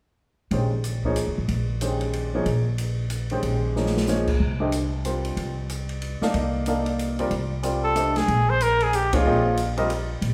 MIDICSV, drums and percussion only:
0, 0, Header, 1, 2, 480
1, 0, Start_track
1, 0, Tempo, 323625
1, 765, Time_signature, 3, 2, 24, 8
1, 15333, End_track
2, 0, Start_track
2, 0, Title_t, "Drums"
2, 757, Note_on_c, 9, 51, 44
2, 906, Note_off_c, 9, 51, 0
2, 1242, Note_on_c, 9, 44, 53
2, 1242, Note_on_c, 9, 51, 51
2, 1390, Note_off_c, 9, 44, 0
2, 1390, Note_off_c, 9, 51, 0
2, 1538, Note_on_c, 9, 36, 38
2, 1686, Note_off_c, 9, 36, 0
2, 1717, Note_on_c, 9, 44, 46
2, 1717, Note_on_c, 9, 51, 57
2, 1865, Note_off_c, 9, 44, 0
2, 1865, Note_off_c, 9, 51, 0
2, 2202, Note_on_c, 9, 51, 48
2, 2350, Note_off_c, 9, 51, 0
2, 2683, Note_on_c, 9, 44, 46
2, 2683, Note_on_c, 9, 51, 56
2, 2831, Note_off_c, 9, 44, 0
2, 2831, Note_off_c, 9, 51, 0
2, 2976, Note_on_c, 9, 51, 40
2, 3125, Note_off_c, 9, 51, 0
2, 3165, Note_on_c, 9, 51, 53
2, 3313, Note_off_c, 9, 51, 0
2, 3645, Note_on_c, 9, 51, 49
2, 3793, Note_off_c, 9, 51, 0
2, 4125, Note_on_c, 9, 44, 47
2, 4125, Note_on_c, 9, 51, 57
2, 4273, Note_off_c, 9, 44, 0
2, 4273, Note_off_c, 9, 51, 0
2, 4595, Note_on_c, 9, 44, 55
2, 4595, Note_on_c, 9, 51, 58
2, 4743, Note_off_c, 9, 44, 0
2, 4743, Note_off_c, 9, 51, 0
2, 4890, Note_on_c, 9, 51, 38
2, 5039, Note_off_c, 9, 51, 0
2, 5082, Note_on_c, 9, 51, 52
2, 5230, Note_off_c, 9, 51, 0
2, 5575, Note_on_c, 9, 38, 36
2, 5723, Note_off_c, 9, 38, 0
2, 5726, Note_on_c, 9, 38, 45
2, 5875, Note_off_c, 9, 38, 0
2, 5882, Note_on_c, 9, 38, 64
2, 6031, Note_off_c, 9, 38, 0
2, 6035, Note_on_c, 9, 44, 55
2, 6043, Note_on_c, 9, 38, 52
2, 6184, Note_off_c, 9, 44, 0
2, 6191, Note_off_c, 9, 38, 0
2, 6339, Note_on_c, 9, 49, 64
2, 6340, Note_on_c, 9, 36, 68
2, 6488, Note_off_c, 9, 49, 0
2, 6489, Note_off_c, 9, 36, 0
2, 7002, Note_on_c, 9, 44, 49
2, 7002, Note_on_c, 9, 51, 57
2, 7151, Note_off_c, 9, 44, 0
2, 7151, Note_off_c, 9, 51, 0
2, 7485, Note_on_c, 9, 44, 50
2, 7485, Note_on_c, 9, 51, 57
2, 7634, Note_off_c, 9, 44, 0
2, 7634, Note_off_c, 9, 51, 0
2, 7781, Note_on_c, 9, 51, 43
2, 7929, Note_off_c, 9, 51, 0
2, 7965, Note_on_c, 9, 51, 53
2, 8113, Note_off_c, 9, 51, 0
2, 8446, Note_on_c, 9, 44, 57
2, 8446, Note_on_c, 9, 51, 50
2, 8594, Note_off_c, 9, 44, 0
2, 8594, Note_off_c, 9, 51, 0
2, 8736, Note_on_c, 9, 51, 39
2, 8885, Note_off_c, 9, 51, 0
2, 8923, Note_on_c, 9, 51, 52
2, 9071, Note_off_c, 9, 51, 0
2, 9220, Note_on_c, 9, 38, 56
2, 9368, Note_off_c, 9, 38, 0
2, 9402, Note_on_c, 9, 51, 53
2, 9550, Note_off_c, 9, 51, 0
2, 9876, Note_on_c, 9, 44, 46
2, 9876, Note_on_c, 9, 51, 57
2, 10024, Note_off_c, 9, 44, 0
2, 10024, Note_off_c, 9, 51, 0
2, 10175, Note_on_c, 9, 51, 40
2, 10323, Note_off_c, 9, 51, 0
2, 10371, Note_on_c, 9, 44, 55
2, 10371, Note_on_c, 9, 51, 53
2, 10519, Note_off_c, 9, 44, 0
2, 10519, Note_off_c, 9, 51, 0
2, 10661, Note_on_c, 9, 51, 41
2, 10809, Note_off_c, 9, 51, 0
2, 10838, Note_on_c, 9, 51, 47
2, 10986, Note_off_c, 9, 51, 0
2, 11321, Note_on_c, 9, 44, 49
2, 11321, Note_on_c, 9, 51, 57
2, 11469, Note_off_c, 9, 44, 0
2, 11469, Note_off_c, 9, 51, 0
2, 11801, Note_on_c, 9, 44, 57
2, 11801, Note_on_c, 9, 51, 56
2, 11949, Note_off_c, 9, 44, 0
2, 11949, Note_off_c, 9, 51, 0
2, 12101, Note_on_c, 9, 51, 43
2, 12108, Note_on_c, 9, 38, 50
2, 12249, Note_off_c, 9, 51, 0
2, 12256, Note_off_c, 9, 38, 0
2, 12284, Note_on_c, 9, 51, 46
2, 12433, Note_off_c, 9, 51, 0
2, 12763, Note_on_c, 9, 44, 49
2, 12763, Note_on_c, 9, 51, 54
2, 12912, Note_off_c, 9, 44, 0
2, 12912, Note_off_c, 9, 51, 0
2, 13058, Note_on_c, 9, 51, 44
2, 13206, Note_off_c, 9, 51, 0
2, 13246, Note_on_c, 9, 44, 58
2, 13246, Note_on_c, 9, 51, 61
2, 13394, Note_off_c, 9, 44, 0
2, 13394, Note_off_c, 9, 51, 0
2, 13538, Note_on_c, 9, 51, 72
2, 13542, Note_on_c, 9, 36, 79
2, 13686, Note_off_c, 9, 51, 0
2, 13690, Note_off_c, 9, 36, 0
2, 14199, Note_on_c, 9, 44, 56
2, 14199, Note_on_c, 9, 51, 63
2, 14348, Note_off_c, 9, 44, 0
2, 14348, Note_off_c, 9, 51, 0
2, 14498, Note_on_c, 9, 51, 44
2, 14646, Note_off_c, 9, 51, 0
2, 14681, Note_on_c, 9, 51, 57
2, 14829, Note_off_c, 9, 51, 0
2, 15159, Note_on_c, 9, 51, 58
2, 15307, Note_off_c, 9, 51, 0
2, 15333, End_track
0, 0, End_of_file